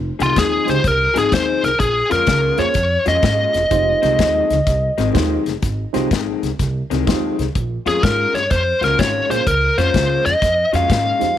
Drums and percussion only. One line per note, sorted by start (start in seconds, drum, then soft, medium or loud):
0.20 snare soft
0.20 closed hi-hat medium
0.36 kick medium
0.36 snare loud
0.36 closed hi-hat medium
0.68 snare soft
0.68 closed hi-hat medium
0.84 kick medium
0.84 snare soft
0.84 closed hi-hat medium
1.16 snare soft
1.16 closed hi-hat medium
1.32 kick medium
1.32 snare loud
1.32 closed hi-hat medium
1.64 snare soft
1.64 closed hi-hat medium
1.80 kick medium
1.80 closed hi-hat medium
2.11 snare soft
2.11 closed hi-hat medium
2.27 kick medium
2.27 snare loud
2.27 closed hi-hat medium
2.58 snare soft
2.58 closed hi-hat medium
2.74 kick medium
2.74 snare soft
2.74 closed hi-hat medium
3.06 snare soft
3.06 closed hi-hat medium
3.23 kick medium
3.23 snare loud
3.23 closed hi-hat medium
3.54 snare soft
3.54 closed hi-hat medium
3.71 kick medium
3.71 closed hi-hat medium
4.03 snare soft
4.03 closed hi-hat medium
4.19 kick medium
4.19 snare loud
4.19 closed hi-hat medium
4.50 snare soft
4.50 closed hi-hat medium
4.67 kick medium
4.67 snare soft
4.67 closed hi-hat medium
4.98 snare soft
4.98 closed hi-hat medium
5.15 kick medium
5.15 snare loud
5.15 closed hi-hat medium
5.46 snare soft
5.46 closed hi-hat medium
5.62 kick medium
5.62 snare soft
5.62 closed hi-hat medium
5.94 snare soft
5.94 closed hi-hat medium
6.11 kick medium
6.11 snare loud
6.11 closed hi-hat medium
6.43 snare soft
6.43 closed hi-hat medium
6.59 kick medium
6.59 snare soft
6.59 closed hi-hat medium
6.91 snare soft
6.91 closed hi-hat medium
7.07 kick medium
7.07 snare loud
7.07 closed hi-hat medium
7.39 snare soft
7.39 closed hi-hat medium
7.55 kick medium
7.55 closed hi-hat medium
7.86 snare soft
7.86 closed hi-hat medium
8.03 kick medium
8.03 snare medium
8.03 closed hi-hat medium
8.35 snare soft
8.35 closed hi-hat medium
8.50 kick medium
8.50 snare soft
8.50 closed hi-hat medium
8.83 snare soft
8.83 closed hi-hat medium
8.99 kick medium
8.99 snare loud
8.99 closed hi-hat medium
9.31 snare soft
9.31 closed hi-hat medium
9.47 kick medium
9.47 closed hi-hat medium
9.78 snare soft
9.78 closed hi-hat medium
9.94 kick medium
9.94 snare loud
9.94 closed hi-hat medium
10.26 snare soft
10.26 closed hi-hat medium
10.42 kick medium
10.42 snare soft
10.42 closed hi-hat medium
10.73 snare soft
10.73 closed hi-hat medium
10.90 kick medium
10.90 snare loud
10.90 closed hi-hat medium
11.21 snare soft
11.21 closed hi-hat medium